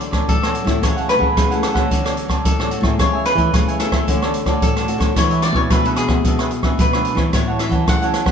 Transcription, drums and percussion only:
0.01 closed hi-hat soft
0.13 kick medium
0.13 cross-stick medium
0.13 closed hi-hat soft
0.29 kick medium
0.29 closed hi-hat soft
0.43 cross-stick medium
0.43 closed hi-hat soft
0.55 closed hi-hat soft
0.67 kick medium
0.67 cross-stick medium
0.67 closed hi-hat soft
0.83 kick medium
0.83 cross-stick medium
0.83 closed hi-hat medium
0.97 closed hi-hat soft
1.09 cross-stick medium
1.09 closed hi-hat soft
1.21 kick medium
1.37 kick medium
1.37 cross-stick medium
1.37 closed hi-hat medium
1.52 closed hi-hat soft
1.63 cross-stick medium
1.63 closed hi-hat soft
1.75 kick medium
1.75 cross-stick medium
1.91 kick medium
1.91 closed hi-hat medium
2.06 cross-stick medium
2.06 closed hi-hat soft
2.17 closed hi-hat soft
2.29 kick medium
2.29 cross-stick medium
2.45 kick medium
2.45 closed hi-hat medium
2.60 cross-stick medium
2.71 closed hi-hat soft
2.83 kick medium
2.83 cross-stick medium
2.99 kick medium
2.99 cross-stick medium
2.99 closed hi-hat medium
3.25 cross-stick medium
3.25 closed hi-hat soft
3.38 kick soft
3.38 closed hi-hat soft
3.54 kick medium
3.54 cross-stick medium
3.54 closed hi-hat medium
3.68 closed hi-hat soft
3.80 cross-stick medium
3.80 closed hi-hat soft
3.92 kick medium
3.92 cross-stick medium
4.08 kick medium
4.08 closed hi-hat medium
4.22 cross-stick medium
4.34 closed hi-hat soft
4.46 kick medium
4.46 cross-stick soft
4.46 closed hi-hat soft
4.62 kick medium
4.62 closed hi-hat medium
4.76 cross-stick medium
4.76 closed hi-hat soft
4.88 closed hi-hat soft
5.00 kick medium
5.00 cross-stick medium
5.00 closed hi-hat soft
5.16 kick medium
5.16 cross-stick medium
5.16 closed hi-hat medium
5.31 closed hi-hat soft
5.42 cross-stick medium
5.42 closed hi-hat soft
5.54 kick medium
5.70 kick medium
5.70 cross-stick medium
5.70 closed hi-hat medium
5.85 closed hi-hat soft
5.96 cross-stick medium
5.96 closed hi-hat soft
6.08 kick medium
6.08 cross-stick medium
6.25 kick medium
6.25 closed hi-hat medium
6.39 cross-stick medium
6.39 closed hi-hat soft
6.51 closed hi-hat soft
6.63 kick medium
6.63 cross-stick medium
6.79 kick medium
6.79 closed hi-hat medium
6.93 cross-stick medium
7.05 closed hi-hat soft
7.17 kick medium
7.17 cross-stick medium
7.33 kick medium
7.33 cross-stick medium
7.33 closed hi-hat medium
7.59 cross-stick medium
7.59 closed hi-hat soft
7.71 kick medium
7.71 closed hi-hat soft
7.87 kick medium
7.87 cross-stick medium
7.87 closed hi-hat medium
8.02 closed hi-hat soft
8.14 cross-stick medium
8.14 closed hi-hat soft
8.26 kick medium
8.26 cross-stick medium

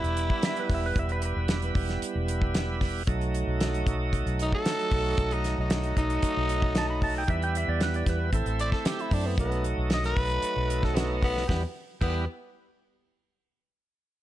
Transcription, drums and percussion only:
0.04 closed hi-hat soft
0.17 closed hi-hat medium
0.30 kick medium
0.43 snare loud
0.43 closed hi-hat medium
0.56 closed hi-hat soft
0.70 kick medium
0.70 snare soft
0.70 open hi-hat medium
0.96 kick medium
0.96 closed hi-hat medium
1.09 closed hi-hat soft
1.22 closed hi-hat medium
1.48 snare loud
1.48 closed hi-hat medium
1.62 closed hi-hat soft
1.75 kick medium
1.75 open hi-hat medium
1.89 snare soft
1.89 closed hi-hat soft
2.02 closed hi-hat medium
2.28 closed hi-hat medium
2.42 kick medium
2.55 snare loud
2.55 closed hi-hat medium
2.81 kick medium
2.81 snare soft
2.81 open hi-hat medium
3.07 kick medium
3.07 closed hi-hat medium
3.21 closed hi-hat soft
3.34 closed hi-hat medium
3.61 snare loud
3.61 closed hi-hat medium
3.74 closed hi-hat soft
3.87 kick medium
3.87 closed hi-hat medium
4.13 kick medium
4.13 closed hi-hat medium
4.27 closed hi-hat soft
4.39 closed hi-hat medium
4.53 kick medium
4.65 snare loud
4.65 closed hi-hat medium
4.79 closed hi-hat soft
4.91 kick medium
4.91 open hi-hat medium
5.17 kick medium
5.17 closed hi-hat medium
5.31 closed hi-hat soft
5.44 snare soft
5.44 closed hi-hat medium
5.70 snare loud
5.70 closed hi-hat medium
5.83 closed hi-hat soft
5.97 kick medium
5.97 closed hi-hat medium
6.10 closed hi-hat soft
6.22 kick medium
6.22 closed hi-hat medium
6.49 closed hi-hat medium
6.62 kick medium
6.75 snare loud
6.75 closed hi-hat medium
7.02 kick medium
7.02 open hi-hat medium
7.28 kick medium
7.28 closed hi-hat medium
7.42 closed hi-hat soft
7.55 closed hi-hat medium
7.81 snare loud
7.81 closed hi-hat medium
7.94 closed hi-hat soft
8.06 kick medium
8.06 snare soft
8.06 closed hi-hat medium
8.33 kick medium
8.33 closed hi-hat medium
8.46 closed hi-hat soft
8.59 closed hi-hat medium
8.72 kick medium
8.72 snare soft
8.85 snare loud
8.85 closed hi-hat medium
8.99 closed hi-hat soft
9.11 kick medium
9.11 open hi-hat medium
9.38 kick loud
9.38 closed hi-hat medium
9.52 closed hi-hat soft
9.64 closed hi-hat medium
9.90 snare medium
9.90 closed hi-hat medium
10.04 snare soft
10.04 closed hi-hat soft
10.17 kick medium
10.17 open hi-hat medium
10.30 closed hi-hat soft
10.42 closed hi-hat medium
10.70 closed hi-hat medium
10.83 kick medium
10.83 snare soft
10.96 snare loud
10.96 closed hi-hat medium
11.23 kick medium
11.23 open hi-hat medium
11.37 snare soft
11.49 kick medium
11.49 snare medium
12.01 kick medium
12.01 crash medium

